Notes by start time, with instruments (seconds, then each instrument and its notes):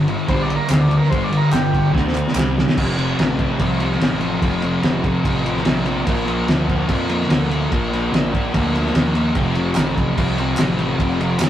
Already playing: picked electric bass G1
0.08 distorted electric guitar G2 D3, crash
0.27 picked electric bass A#1, distorted electric guitar G2 D3 G3, transistor combo organ C5, kick, crash
0.42 transistor combo organ D5
0.49 distorted electric guitar G2 D3, crash
0.56 transistor combo organ A#4
0.68 picked electric bass D2, distorted electric guitar G2 D3, transistor combo organ C5, snare, clap, crash
0.81 transistor combo organ D5
0.89 distorted electric guitar G2 D3, crash
0.97 transistor combo organ A#4
1.03 snare
1.10 picked electric bass G1, distorted electric guitar G2 D3 G3, transistor combo organ C5, kick, crash
1.24 transistor combo organ D5
1.31 distorted electric guitar G2 D3, crash
1.37 transistor combo organ A#4
1.52 picked electric bass G1, distorted electric guitar G2 D3, transistor combo organ G4, snare, clap, crash
1.73 distorted electric guitar G2 D3, kick, crash
1.93 picked electric bass D2, distorted electric guitar D3 A3 D4, kick, snare
2.08 snare
2.14 distorted electric guitar D3 A3, clap
2.28 snare
2.35 picked electric bass C2, distorted electric guitar C3 G3 C4, snare, clap
2.56 distorted electric guitar C3 G3, snare
2.69 snare
2.77 picked electric bass F1, distorted electric guitar F2 C3 F3, kick, crash
2.96 distorted electric guitar F2 C3 F3, crash
3.19 picked electric bass A1, distorted electric guitar F2 C3 F3, snare, crash
3.38 distorted electric guitar F2 C3 F3, kick, crash
3.59 picked electric bass C2, distorted electric guitar F2 C3 F3, kick, crash
3.80 distorted electric guitar F2 C3 F3, crash
3.92 snare
4.00 picked electric bass A1, distorted electric guitar F2 C3 F3, snare, crash
4.19 distorted electric guitar F2 C3 F3, crash
4.41 picked electric bass F1, distorted electric guitar F2 C3 F3, kick, crash
4.62 distorted electric guitar F2 C3 F3, crash
4.82 picked electric bass F1, distorted electric guitar F2 C3 F3, snare, crash
5.03 distorted electric guitar F2 C3 F3, kick, crash
5.24 picked electric bass A1, distorted electric guitar F2 C3 F3, kick, crash
5.44 distorted electric guitar F2 C3 F3, crash
5.57 snare
5.64 picked electric bass A#1, distorted electric guitar F2 C3 F3, snare, crash
5.84 distorted electric guitar F2 C3 F3, crash
6.04 picked electric bass A#1, distorted electric guitar A#2 F3 A#3, kick, crash
6.25 distorted electric guitar A#2 F3 A#3, crash
6.47 picked electric bass D2, distorted electric guitar A#2 F3 A#3, snare, crash
6.68 distorted electric guitar A#2 F3 A#3, kick, crash
6.88 picked electric bass F2, distorted electric guitar A#2 F3 A#3, kick, crash
7.09 distorted electric guitar A#2 F3 A#3, crash
7.21 snare
7.29 picked electric bass D2, distorted electric guitar A#2 F3 A#3, snare, crash
7.50 distorted electric guitar A#2 F3 A#3, crash
7.70 picked electric bass A#1, distorted electric guitar A#2 F3 A#3, kick, crash
7.92 distorted electric guitar A#2 F3 A#3, crash
8.12 picked electric bass A#1, distorted electric guitar A#2 F3 A#3, snare, crash
8.33 distorted electric guitar A#2 F3 A#3, kick, crash
8.53 picked electric bass D2, distorted electric guitar A#2 F3 A#3, kick, crash
8.73 distorted electric guitar A#2 F3 A#3, crash
8.86 snare
8.95 picked electric bass D#2, distorted electric guitar A#2 F3 A#3, snare, crash
9.15 distorted electric guitar A#2 F3 A#3, crash
9.35 picked electric bass F1, distorted electric guitar F2 C3 F3, kick, crash
9.55 distorted electric guitar F2 C3 F3, crash
9.75 picked electric bass A1, distorted electric guitar F2 C3 F3, snare, clap, crash
9.96 distorted electric guitar F2 C3 F3, kick, crash
10.17 picked electric bass C2, distorted electric guitar F2 C3 F3, kick, crash
10.38 distorted electric guitar F2 C3 F3, crash
10.57 picked electric bass A1, distorted electric guitar F2 C3 F3, snare, clap, crash
10.79 distorted electric guitar F2 C3 F3, crash
10.99 picked electric bass F1, distorted electric guitar F2 C3 F3, kick, crash
11.19 distorted electric guitar F2 C3 F3, crash
11.38 picked electric bass F1, distorted electric guitar F2 C3 F3, snare, clap, crash